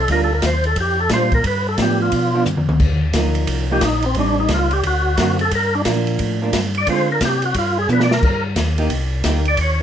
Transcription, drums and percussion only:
0.08 kick, ride
0.42 kick, snare, hi-hat pedal, ride
0.64 ride
0.76 kick, ride
1.09 kick, snare, hi-hat pedal, ride
1.32 kick, ride
1.44 kick, ride
1.78 kick, snare, hi-hat pedal, ride
2.12 kick, ride
2.45 hi-hat pedal, mid tom
2.57 mid tom
2.69 mid tom
2.80 kick, crash
3.13 kick, snare, hi-hat pedal, ride
3.35 ride
3.47 kick, ride
3.81 kick, snare, hi-hat pedal, ride
4.03 ride
4.14 kick, ride
4.48 kick, snare, hi-hat pedal, ride
4.71 ride
4.83 kick, ride
5.17 kick, snare, hi-hat pedal, ride
5.39 ride
5.51 kick, ride
5.85 kick, snare, hi-hat pedal, ride
6.07 ride
6.19 kick, ride
6.53 kick, snare, hi-hat pedal, ride
6.75 ride
6.87 kick, ride
7.21 kick, snare, hi-hat pedal, ride
7.42 ride
7.54 kick, ride
7.89 hi-hat pedal
8.00 snare
8.11 snare
8.23 kick, crash
8.56 kick, snare, hi-hat pedal, ride
8.78 ride
8.90 kick, ride
9.24 kick, snare, hi-hat pedal, ride
9.45 ride
9.57 kick, ride

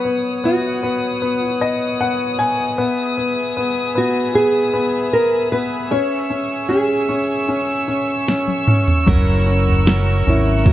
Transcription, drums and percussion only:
8.28 snare
8.48 high tom
8.67 mid tom
8.88 floor tom
9.07 kick, floor tom
9.67 floor tom
9.87 snare
10.27 floor tom
10.66 kick, floor tom

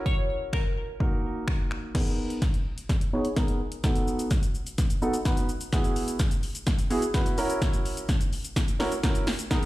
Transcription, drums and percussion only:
0.06 kick
0.53 finger snap, kick
1.00 kick
1.48 finger snap, kick
1.71 finger snap
1.95 kick, snare, closed hi-hat, crash
2.07 closed hi-hat
2.30 closed hi-hat
2.42 kick, snare, closed hi-hat
2.54 closed hi-hat
2.78 closed hi-hat
2.89 kick, snare, closed hi-hat
3.01 closed hi-hat
3.25 closed hi-hat
3.36 kick, snare, closed hi-hat
3.48 closed hi-hat
3.72 closed hi-hat
3.84 kick, snare, closed hi-hat, shaker
3.96 closed hi-hat, shaker
4.08 shaker
4.19 closed hi-hat, shaker
4.31 kick, snare, closed hi-hat, shaker
4.43 closed hi-hat, shaker
4.55 shaker
4.67 closed hi-hat, shaker
4.78 kick, snare, closed hi-hat, shaker
4.90 closed hi-hat, shaker
5.02 shaker
5.14 closed hi-hat, shaker
5.25 kick, snare, closed hi-hat, shaker
5.37 closed hi-hat, shaker
5.49 shaker
5.61 closed hi-hat, shaker
5.73 kick, snare, closed hi-hat, shaker
5.84 closed hi-hat, shaker
5.96 open hi-hat, shaker
6.08 closed hi-hat, shaker
6.19 kick, snare, closed hi-hat, shaker
6.31 closed hi-hat, shaker
6.43 open hi-hat, shaker
6.55 closed hi-hat, shaker
6.67 kick, snare, closed hi-hat, shaker
6.79 closed hi-hat, shaker
6.91 open hi-hat, shaker
7.02 closed hi-hat, shaker
7.14 kick, snare, closed hi-hat, shaker
7.26 closed hi-hat, shaker
7.38 open hi-hat, shaker
7.50 closed hi-hat, shaker
7.62 kick, snare, closed hi-hat, shaker
7.73 closed hi-hat, shaker
7.86 open hi-hat, shaker
7.97 closed hi-hat, shaker
8.09 kick, snare, closed hi-hat, shaker
8.21 closed hi-hat, shaker
8.33 open hi-hat, shaker
8.45 closed hi-hat, shaker
8.56 kick, snare, closed hi-hat, shaker
8.68 closed hi-hat, shaker
8.80 snare, open hi-hat, shaker
8.92 closed hi-hat, shaker
9.03 kick, snare, closed hi-hat, shaker
9.15 closed hi-hat, shaker
9.27 snare, open hi-hat, shaker
9.39 closed hi-hat, shaker
9.51 kick, snare, closed hi-hat, shaker

